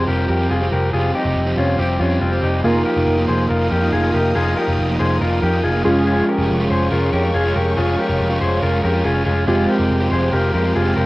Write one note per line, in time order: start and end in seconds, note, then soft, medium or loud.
0.00 2.60 C4 medium
0.00 2.60 F4 medium
0.00 2.61 G4 medium
0.07 0.25 F1 loud
0.07 0.40 F3 medium
0.07 0.40 G3 medium
0.07 0.39 C4 medium
0.07 0.29 G4 medium
0.07 0.38 G4 medium
0.07 0.28 A#4 medium
0.29 0.47 F2 loud
0.29 0.51 G4 medium
0.29 0.50 A#4 medium
0.39 0.62 G3 soft
0.39 0.60 C4 medium
0.39 0.59 G4 medium
0.50 0.68 F1 medium
0.50 0.72 F4 medium
0.50 0.72 G#4 medium
0.60 0.92 G3 soft
0.60 0.93 C4 medium
0.60 0.93 G4 medium
0.72 0.90 F1 loud
0.72 0.94 G4 medium
0.72 0.93 A#4 medium
0.93 1.11 F1 loud
0.93 1.25 F3 medium
0.93 1.26 G3 medium
0.93 1.25 C4 loud
0.93 1.15 F4 medium
0.93 1.23 G4 medium
0.93 1.14 G#4 loud
1.15 1.55 D#4 medium
1.15 1.55 G4 medium
1.24 1.34 F1 loud
1.24 1.46 G3 soft
1.24 1.46 C4 medium
1.24 1.45 G4 medium
1.36 1.53 F1 loud
1.46 1.77 F3 medium
1.46 1.78 G3 medium
1.46 1.79 C4 medium
1.46 1.79 G4 medium
1.57 1.75 F1 medium
1.57 1.79 C#4 medium
1.57 1.79 F4 medium
1.78 1.96 F1 loud
1.78 2.11 F3 medium
1.78 2.11 G3 medium
1.78 2.00 C4 medium
1.78 2.10 C4 medium
1.78 2.00 G4 medium
1.78 2.09 G4 medium
2.00 2.17 F2 loud
2.00 2.22 C#4 medium
2.00 2.20 F4 medium
2.10 2.33 G3 soft
2.10 2.32 C4 medium
2.10 2.31 G4 medium
2.21 2.39 F1 medium
2.21 2.43 C4 medium
2.21 2.43 F4 medium
2.32 2.64 G3 soft
2.32 2.65 C4 medium
2.32 2.64 G4 medium
2.43 2.60 F1 loud
2.43 2.65 D#4 medium
2.43 2.64 G4 medium
2.64 2.82 F1 loud
2.64 2.96 F3 medium
2.64 5.80 A#3 medium
2.64 2.97 A#3 medium
2.64 5.81 D#4 medium
2.64 2.96 D#4 medium
2.64 5.81 F4 medium
2.64 2.86 F4 medium
2.64 2.95 F4 loud
2.64 2.85 G#4 medium
2.64 5.81 A#4 medium
2.64 5.81 D#5 medium
2.64 5.81 F5 medium
2.64 5.81 D#6 medium
2.85 3.26 G4 medium
2.85 3.26 A#4 medium
2.96 3.05 F1 medium
2.96 3.18 A#3 soft
2.96 3.17 D#4 medium
2.96 3.16 F4 medium
3.07 3.25 F1 loud
3.17 3.48 F3 medium
3.17 3.49 A#3 medium
3.17 3.50 D#4 medium
3.17 3.50 F4 medium
3.28 3.46 F1 medium
3.28 3.50 G#4 medium
3.28 3.49 C5 medium
3.49 3.67 F1 loud
3.49 3.82 F3 medium
3.49 3.82 A#3 medium
3.49 3.82 D#4 medium
3.49 3.71 F4 medium
3.49 3.80 F4 medium
3.49 3.69 A#4 medium
3.70 3.89 F2 loud
3.70 3.92 G4 medium
3.70 3.92 A#4 medium
3.81 4.04 A#3 medium
3.81 4.03 D#4 soft
3.81 4.01 F4 medium
3.92 4.10 F1 loud
3.92 4.14 F4 medium
3.92 4.14 G#4 medium
4.02 4.34 A#3 soft
4.02 4.34 D#4 medium
4.02 4.35 F4 medium
4.14 4.32 F1 loud
4.14 4.35 G4 medium
4.14 4.35 A#4 medium
4.34 4.53 F1 loud
4.34 4.67 F3 medium
4.34 4.67 A#3 medium
4.34 4.67 D#4 medium
4.34 4.57 F4 medium
4.34 4.65 F4 loud
4.34 4.57 G#4 loud
4.57 4.97 G4 medium
4.57 4.97 A#4 medium
4.67 4.76 F1 medium
4.67 4.88 A#3 medium
4.67 4.88 D#4 medium
4.67 4.87 F4 medium
4.79 4.96 F1 loud
4.88 5.19 F3 medium
4.88 5.20 A#3 medium
4.88 5.21 D#4 medium
4.88 5.20 F4 medium
4.99 5.17 F1 loud
4.99 5.21 G#4 medium
4.99 5.20 C5 medium
5.20 5.39 F1 loud
5.20 5.53 F3 medium
5.20 5.53 A#3 medium
5.20 5.52 D#4 medium
5.20 5.43 F4 medium
5.20 5.51 F4 medium
5.20 5.41 A#4 medium
5.42 5.60 F2 loud
5.42 5.63 G4 medium
5.42 5.64 A#4 medium
5.52 5.75 A#3 soft
5.52 5.74 D#4 soft
5.52 5.72 F4 medium
5.63 5.81 F1 medium
5.63 5.85 F4 medium
5.63 5.84 G#4 medium
5.73 5.84 A#3 medium
5.73 5.85 D#4 medium
5.73 5.84 F4 medium
5.84 6.20 F1 loud
5.84 6.61 F3 loud
5.84 9.22 G#3 medium
5.84 6.39 G#3 medium
5.84 11.06 G#3 medium
5.84 9.22 C#4 medium
5.84 6.38 C#4 loud
5.84 9.22 F4 medium
5.84 6.37 F4 medium
5.84 6.06 F4 medium
5.84 9.22 G#4 medium
5.84 6.05 G#4 medium
5.84 9.44 C#5 medium
5.84 11.06 F5 medium
5.84 9.43 C#6 medium
6.07 6.28 F4 medium
6.07 6.28 G#4 loud
6.28 6.68 G4 medium
6.28 6.68 A#4 medium
6.37 6.47 F1 loud
6.37 6.59 G#3 medium
6.37 6.59 C#4 medium
6.37 6.58 F4 medium
6.49 6.67 F1 loud
6.59 6.90 F3 medium
6.59 6.91 G#3 medium
6.59 6.92 C#4 medium
6.59 6.91 F4 medium
6.70 6.88 F1 loud
6.70 6.92 G#4 medium
6.70 6.91 C5 medium
6.91 7.09 F1 loud
6.91 7.23 F3 medium
6.91 7.24 G#3 medium
6.91 7.23 C#4 medium
6.91 7.13 F4 medium
6.91 7.22 F4 medium
6.91 7.12 A#4 medium
7.13 7.30 F2 loud
7.13 7.34 G4 medium
7.13 7.34 A#4 medium
7.23 7.46 G#3 soft
7.23 7.44 C#4 medium
7.23 7.43 F4 medium
7.34 7.52 F1 loud
7.34 7.56 F4 medium
7.34 7.56 G#4 medium
7.44 7.76 G#3 soft
7.44 7.77 C#4 medium
7.44 7.76 F4 medium
7.56 7.73 F1 loud
7.56 7.76 G4 medium
7.56 7.77 A#4 medium
7.76 7.95 F1 loud
7.76 8.09 F3 medium
7.76 8.09 G#3 medium
7.76 8.08 C#4 medium
7.76 7.99 F4 medium
7.76 8.07 F4 loud
7.76 7.98 G#4 loud
7.98 8.39 G4 medium
7.98 8.38 A#4 medium
8.08 8.18 F1 loud
8.08 8.30 G#3 soft
8.08 8.29 C#4 medium
8.08 8.28 F4 medium
8.20 8.37 F1 loud
8.30 8.60 F3 medium
8.30 8.61 G#3 medium
8.30 8.62 C#4 medium
8.30 8.62 F4 medium
8.41 8.58 F1 loud
8.41 8.63 G#4 medium
8.41 8.62 C5 medium
8.61 8.80 F1 loud
8.61 8.94 F3 medium
8.61 8.94 G#3 medium
8.61 8.93 C#4 medium
8.61 8.84 F4 medium
8.61 8.92 F4 medium
8.61 8.83 A#4 medium
8.84 9.01 F2 medium
8.84 9.04 G4 medium
8.84 9.05 A#4 medium
8.93 9.16 G#3 soft
8.93 9.15 C#4 medium
8.93 9.13 F4 medium
9.05 9.22 F1 medium
9.05 9.26 F4 medium
9.05 9.25 G#4 medium
9.15 9.46 G#3 soft
9.15 9.48 C#4 soft
9.15 9.47 F4 medium
9.26 9.44 F1 loud
9.26 9.47 F4 medium
9.26 9.46 G#4 medium
9.47 9.65 F1 loud
9.47 9.79 F3 medium
9.47 11.06 G#3 medium
9.47 9.79 G#3 medium
9.47 11.06 C4 medium
9.47 9.79 C4 loud
9.47 11.06 F4 medium
9.47 9.69 F4 medium
9.47 11.06 G4 medium
9.47 9.77 G4 medium
9.47 9.69 G#4 medium
9.47 11.06 G5 medium
9.47 11.06 C6 medium
9.69 10.09 G4 medium
9.69 10.09 A#4 medium
9.78 9.88 F1 medium
9.78 10.00 G#3 soft
9.78 10.00 C4 medium
9.78 9.99 G4 medium
9.90 10.07 F1 loud
10.00 10.31 F3 medium
10.00 10.32 G#3 medium
10.00 10.33 C4 medium
10.00 10.32 G4 medium
10.11 10.29 F1 loud
10.11 10.33 G#4 medium
10.11 10.32 C5 medium
10.32 10.50 F1 loud
10.32 10.64 F3 medium
10.32 10.65 G#3 medium
10.32 10.64 C4 medium
10.32 10.53 G4 medium
10.32 10.62 G4 medium
10.32 10.53 A#4 medium
10.54 10.71 F2 loud
10.54 10.75 G4 medium
10.54 10.75 A#4 medium
10.64 10.86 G#3 medium
10.64 10.85 C4 medium
10.64 10.84 G4 medium
10.75 10.93 F1 medium
10.75 10.97 F4 medium
10.75 10.96 G#4 medium
10.85 11.06 G#3 medium
10.85 11.06 C4 medium
10.85 11.06 G4 medium
10.96 11.06 F1 loud
10.96 11.06 G4 medium
10.96 11.06 A#4 medium